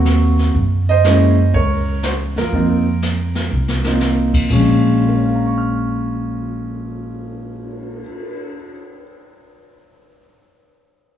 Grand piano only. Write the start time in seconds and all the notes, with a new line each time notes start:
Already playing: F#3 A#3 C4 F#4
0.89 C5 D#5
1.05 G#3 A#3 C#4 E4
1.54 A#4 C#5
2.04 F#4 C5
2.38 F4 A#4
2.53 A#3 C4 D#4 F4
3.85 A#3 C4 D#4 F4
4.50 A#2 F3 G#3 C#4
5.01 F4
5.08 A#4
5.17 C#5
5.26 F5
5.35 A#5
5.46 C#6
5.58 F6